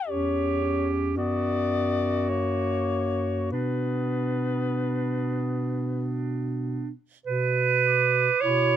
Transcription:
0.08 bass clarinet E2, clarinet C#4 G4, soprano saxophone C#5
0.62 clarinet C#4
1.16 bass clarinet F#2, clarinet B3 F#4, soprano saxophone D5
2.29 clarinet A#3, soprano saxophone C#5
3.52 bass clarinet B2, clarinet B3 D4, soprano saxophone B4
7.26 bass clarinet B2, clarinet B4
7.85 soprano saxophone D6
8.41 bass clarinet B2, clarinet E4 C#5

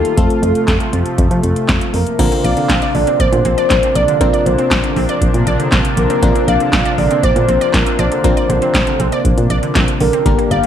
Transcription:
Already playing: analog synth pad D#3 G3 A#3 F4, fm electric piano A#3 D#4 F4 G4, soft synth lead A4
0.05 closed hi-hat
0.17 fm bass F2, analog synth pad C3 F3 A3, fm electric piano A3 C4 F4 A4, kick, closed hi-hat
0.30 closed hi-hat
0.43 fm bass F2, closed hi-hat
0.55 closed hi-hat
0.68 fm bass F2, kick, snare, clap, closed hi-hat
0.80 closed hi-hat
0.93 fm bass F2, closed hi-hat
1.06 closed hi-hat
1.18 fm bass F2, kick, closed hi-hat
1.31 fm bass F3, closed hi-hat
1.43 fm bass F2, closed hi-hat
1.56 closed hi-hat
1.69 fm bass F2, kick, snare, clap, closed hi-hat
1.81 closed hi-hat
1.94 fm bass F2, soft synth lead A#4, open hi-hat
2.07 closed hi-hat
2.19 fm bass A#1, analog synth pad C3 F3 A#3 D4, synth pluck D3, fm electric piano C4 D4 F4 A#4, kick, closed hi-hat, crash
2.32 synth pluck C4, closed hi-hat
2.44 fm bass A#1, synth pluck D5, soft synth lead F5, closed hi-hat
2.57 synth pluck D3, closed hi-hat
2.69 fm bass A#1, synth pluck C4, kick, snare, clap, closed hi-hat
2.82 synth pluck D5, closed hi-hat
2.95 fm bass A#1, synth pluck D3, soft synth lead D5, open hi-hat
3.07 synth pluck C4, closed hi-hat
3.20 fm bass A#1, soft synth lead C5, synth pluck D5, kick, closed hi-hat
3.33 fm bass A#2, synth pluck D3, closed hi-hat
3.45 fm bass A#1, synth pluck C4, closed hi-hat
3.58 synth pluck D5, closed hi-hat
3.70 fm bass A#1, soft synth lead C5, kick, snare, clap, closed hi-hat
3.83 synth pluck C4, closed hi-hat
3.95 fm bass A#1, synth pluck D5, soft synth lead D5, closed hi-hat
4.08 synth pluck D3, closed hi-hat
4.21 fm bass A#1, synth pluck C4, fm electric piano C4 D4 F4 A#4, soft synth lead D5, kick, closed hi-hat
4.33 synth pluck D5, closed hi-hat
4.46 fm bass A#1, synth pluck D3, soft synth lead C5, closed hi-hat
4.59 synth pluck C4, closed hi-hat
4.71 fm bass A#1, kick, snare, clap, closed hi-hat
4.84 synth pluck D3, closed hi-hat
4.96 fm bass A#1, synth pluck C4, open hi-hat
5.09 synth pluck D5, closed hi-hat
5.22 fm bass A#1, kick, closed hi-hat
5.34 fm bass A#2, closed hi-hat
5.47 fm bass A#1, synth pluck D5, closed hi-hat
5.59 synth pluck D3, closed hi-hat
5.72 fm bass A#1, synth pluck C4, kick, snare, clap, closed hi-hat
5.85 closed hi-hat
5.97 fm bass A#1, synth pluck D3, soft synth lead A#4, closed hi-hat
6.10 synth pluck C4, closed hi-hat
6.22 fm bass A#1, synth pluck D3, fm electric piano C4 D4 F4 A#4, kick, closed hi-hat
6.35 synth pluck C4, closed hi-hat
6.48 fm bass A#1, synth pluck D5, soft synth lead F5, closed hi-hat
6.60 synth pluck D3, closed hi-hat
6.73 fm bass A#1, synth pluck C4, kick, snare, clap, closed hi-hat
6.85 synth pluck D5, closed hi-hat
6.98 fm bass A#1, synth pluck D3, soft synth lead D5, open hi-hat
7.11 synth pluck C4, closed hi-hat
7.23 fm bass A#1, soft synth lead C5, synth pluck D5, kick, closed hi-hat
7.36 fm bass A#2, synth pluck D3, closed hi-hat
7.48 fm bass A#1, synth pluck C4, closed hi-hat
7.61 synth pluck D5, closed hi-hat
7.74 fm bass A#1, soft synth lead A#4, kick, snare, clap, closed hi-hat
7.86 synth pluck C4, closed hi-hat
7.99 fm bass A#1, soft synth lead C5, synth pluck D5, closed hi-hat
8.12 synth pluck D3, closed hi-hat
8.24 fm bass A#1, fm electric piano C4 D4 F4 A#4, synth pluck C4, kick, closed hi-hat
8.37 synth pluck D5, closed hi-hat
8.49 fm bass A#1, synth pluck D3, soft synth lead C5, closed hi-hat
8.62 synth pluck C4, closed hi-hat
8.74 fm bass A#1, kick, snare, clap, closed hi-hat
8.87 synth pluck D3, closed hi-hat
9.00 fm bass A#1, synth pluck C4, closed hi-hat
9.12 synth pluck D5, closed hi-hat
9.25 fm bass A#1, kick, closed hi-hat
9.38 fm bass A#2, closed hi-hat
9.50 fm bass A#1, synth pluck D5, closed hi-hat
9.63 synth pluck D3, closed hi-hat
9.75 fm bass A#1, synth pluck C4, kick, snare, clap, closed hi-hat
9.88 closed hi-hat
10.00 fm bass A#1, synth pluck D3, soft synth lead A#4, open hi-hat
10.13 synth pluck C4, closed hi-hat
10.26 fm bass G1, synth pluck D3, analog synth pad D3 G3 A#3 G4, fm electric piano A#3 D4 G4 A#4, kick, closed hi-hat
10.38 synth pluck A#3, closed hi-hat
10.51 fm bass G1, synth pluck D5, soft synth lead F5, closed hi-hat
10.64 closed hi-hat

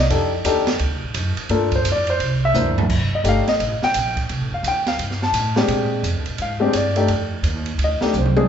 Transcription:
0.00 grand piano D#5
0.10 upright bass F2, grand piano D4 D#4 G4 A4, ride
0.45 upright bass D#2, grand piano D4 D#4 G4 A4, hi-hat pedal, ride
0.67 snare, ride
0.79 upright bass D2, ride
0.91 upright bass C2
1.03 upright bass A1
1.14 upright bass F#2, hi-hat pedal, ride
1.37 muted upright bass stroke, ride
1.49 upright bass G2, grand piano A#3 D4 F4 A4, ride
1.72 grand piano C5, kick, ride
1.84 upright bass F2, hi-hat pedal, ride
1.92 grand piano D5
2.07 grand piano C5, ride
2.20 upright bass C2, ride
2.45 grand piano E5
2.54 upright bass D2, grand piano A#3 D4 E4 C5, floor tom, hi-hat pedal
2.66 floor tom
2.78 floor tom
2.89 upright bass F1, kick, crash
3.12 grand piano D#5, muted upright bass stroke
3.24 upright bass G1, grand piano A3 D4 D#4 G4, hi-hat pedal, ride
3.29 grand piano F5
3.47 grand piano D#5, snare, ride
3.60 upright bass A1, ride
3.82 grand piano G5, muted upright bass stroke, snare
3.94 upright bass A#1, hi-hat pedal, ride
4.17 kick, ride
4.29 upright bass C2, ride
4.40 upright bass A1
4.52 upright bass F1, grand piano F5
4.63 upright bass D2, hi-hat pedal, ride
4.68 grand piano G5
4.86 grand piano F5, snare, ride
4.98 upright bass G2, ride
5.11 snare
5.22 grand piano A5, snare
5.32 upright bass A2, hi-hat pedal, ride
5.56 grand piano G#3 C4 D4 G4, snare
5.68 upright bass A#2, ride
6.03 upright bass F2, hi-hat pedal, ride
6.16 upright bass D2
6.26 upright bass A#1, ride
6.38 upright bass G#2, grand piano F5, ride
6.60 grand piano G#3 C4 D4 G4
6.72 upright bass G2, grand piano C#5, hi-hat pedal, ride
6.77 grand piano D5
6.96 grand piano A3 D4 D#4 G4, ride
7.08 upright bass F2, ride
7.43 upright bass D#2, hi-hat pedal, ride
7.66 ride
7.78 upright bass D2, ride
7.84 grand piano D#5
8.01 grand piano A3 D4 D#4 G4, snare
8.13 upright bass C2, hi-hat pedal, high tom
8.18 grand piano C5
8.26 high tom
8.37 grand piano G#3 C4 D4 G#4, high tom

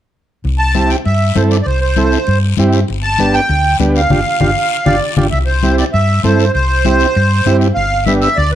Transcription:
0.44 fingered electric bass C2, high conga, long guiro
0.59 accordion A5
0.74 transistor combo organ C4 E4 G4, high conga, short guiro
0.89 accordion G5, short guiro
1.05 fingered electric bass G2, accordion E5, high conga, long guiro
1.35 fingered electric bass G2, transistor combo organ C4 E4 A4, accordion C5, high conga, short guiro
1.51 accordion D5, short guiro
1.62 accordion C5 D5
1.66 fingered electric bass C2, high conga, long guiro
1.81 accordion C5
1.96 transistor combo organ C4 E4 A4, high conga, short guiro
2.12 short guiro
2.27 fingered electric bass G2, high conga, long guiro
2.57 fingered electric bass G2, transistor combo organ C4 E4 G4, high conga, short guiro
2.73 short guiro
2.88 fingered electric bass G1, high conga, long guiro
3.03 accordion A5
3.18 transistor combo organ B3 D4 G4, high conga, short guiro
3.34 accordion G5, short guiro
3.49 fingered electric bass D2, high conga, long guiro
3.79 fingered electric bass D2, transistor combo organ B3 D4 G4, high conga, short guiro
3.96 accordion F5, short guiro
4.10 fingered electric bass G1, transistor combo organ D4 F4 G4, low conga, long guiro
4.40 fingered electric bass G1, transistor combo organ D4 F4 G4, low conga, long guiro
4.86 fingered electric bass G1, transistor combo organ D4 F4 G4, accordion D5, low conga, long guiro
5.17 fingered electric bass G1, transistor combo organ D4 F4 G4, accordion D5, low conga, long guiro
5.31 fingered electric bass C2, accordion E5, high conga, long guiro
5.46 accordion C5
5.63 transistor combo organ C4 E4 G4, high conga, short guiro
5.77 accordion D5, short guiro
5.93 fingered electric bass G2, accordion E5, high conga, long guiro
6.23 fingered electric bass G2, transistor combo organ C4 E4 A4, accordion C5, high conga, short guiro
6.40 short guiro
6.53 fingered electric bass C2, accordion C5, high conga, long guiro
6.85 transistor combo organ C4 E4 G4, high conga, short guiro
7.00 short guiro
7.15 fingered electric bass G2, high conga, long guiro
7.46 fingered electric bass G2, transistor combo organ C4 E4 G4, high conga, short guiro
7.61 short guiro
7.75 fingered electric bass G1, accordion F5, high conga, long guiro
8.06 transistor combo organ B3 D4 G4, accordion E5, high conga, short guiro
8.21 accordion E5, short guiro
8.36 fingered electric bass D2, accordion D5, high conga, long guiro

